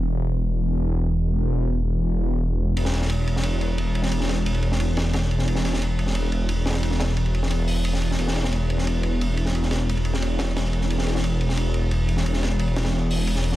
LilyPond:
<<
  \new Staff \with { instrumentName = "Detuned saw bass" } { \clef bass \time 4/4 \key c \lydian \tempo 4 = 177 e,,1~ | e,,1 | e,,1~ | e,,1~ |
e,,1~ | e,,1 | e,,1~ | e,,1~ |
e,,1~ | e,,1 | }
  \new DrumStaff \with { instrumentName = "Drums" } \drummode { \time 4/4 r4 r4 r4 r4 | r4 r4 r4 r4 | cymr16 sn16 <cymr sn>16 sn16 cymr8 cymr16 sn16 cymr8 cymr8 cymr8 cymr16 sn16 | cymr16 sn16 <cymr sn>8 cymr16 cymr16 cymr16 sn16 cymr8 <cymr sn>8 <cymr sn>8 cymr16 sn16 |
cymr16 sn16 <cymr sn>16 sn16 cymr8 cymr16 sn16 cymr8 cymr8 cymr8 <cymr sn>32 <cymr sn>32 <cymr sn>16 | cymr16 sn16 <cymr sn>8 cymr16 cymr16 cymr16 sn16 cymr8 hho8 cymr16 sn16 cymr16 sn16 | cymr16 sn16 <cymr sn>16 sn16 cymr8 cymr16 sn16 cymr8 cymr8 cymr8 cymr16 sn16 | cymr16 sn16 <cymr sn>8 cymr16 cymr16 cymr16 sn16 cymr8 <cymr sn>8 <cymr sn>8 cymr16 sn16 |
cymr16 sn16 <cymr sn>16 sn16 cymr8 cymr16 sn16 cymr8 cymr8 cymr8 cymr16 sn16 | cymr16 sn16 <cymr sn>8 cymr16 cymr16 <cymr sn>16 <cymr sn>16 r8 hho8 cymr16 sn16 cymr16 sn16 | }
>>